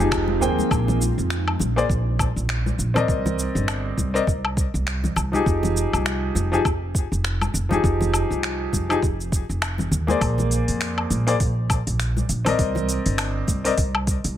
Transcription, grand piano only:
0.00 F3 D#4 G4 G#4
0.41 A#3 G#4 C5 G5
1.76 A#3 G#4 C5 D5
2.94 C4 A#4 D5 D#5
4.14 C4 A#4 D5 D#5
5.32 F3 D#4 G4 G#4
6.52 F3 D#4 G4 G#4
7.69 F3 D#4 G4 G#4
8.89 F3 D#4 G4 G#4
10.07 A#3 G#4 C5 D5
11.27 A#3 G#4 C5 D5
12.45 C4 A#4 D5 D#5
13.64 C4 A#4 D5 D#5

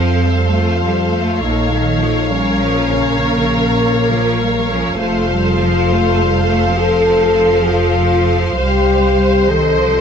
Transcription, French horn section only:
Already playing: C4
0.53 F4
1.42 D#4
2.31 C#4
3.20 A#3
4.71 C#4
4.98 F4
6.78 A4
7.68 F4
8.59 G4
9.48 A4

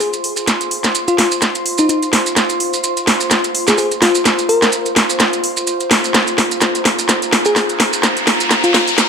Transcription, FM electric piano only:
0.00 G#4
1.08 F4
1.18 F4
1.79 D#4
1.89 D#4
3.68 G#4
3.78 G#4
4.02 F4
4.49 A#4
7.46 G#4
7.56 G#4
8.64 F4
8.74 F4

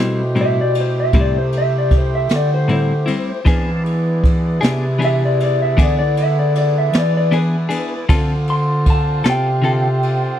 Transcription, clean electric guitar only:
Already playing: E4
0.00 G3 C4
0.35 A2 G3 C4 E4
1.14 A2 G3 C4 E4
2.68 A2 G3 C4 E4
3.06 G3 C4 E4
3.45 E3 B3 D4 G#4
4.61 B3 D4 G#4
4.99 E3 B3 D4 G#4
5.77 E3 B3 D4 G#4
7.31 E3 B3 D4 G#4
7.69 B3 D4 G#4
8.09 D3 C4 F4 A4
9.24 C4 F4 A4
9.62 D3 C4 F4 A4

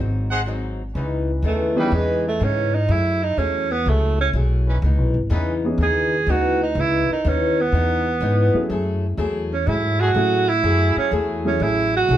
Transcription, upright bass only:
Already playing: G#1
0.95 C#2
1.42 D#2
1.92 E2
2.41 G#2
2.88 F#2
3.37 E2
3.86 C#2
4.33 B1
4.82 C#2
4.98 B1
5.14 G#1
5.30 E2
5.78 D#2
6.27 D2
6.75 C#2
7.09 muted upright bass stroke
7.25 D#2
7.72 E2
8.20 G#2
8.54 muted upright bass stroke
8.70 F#2
9.17 E2
9.67 G#2
10.14 A2
10.64 F#2
10.96 muted upright bass stroke
11.11 E2
11.60 A1
12.09 B1

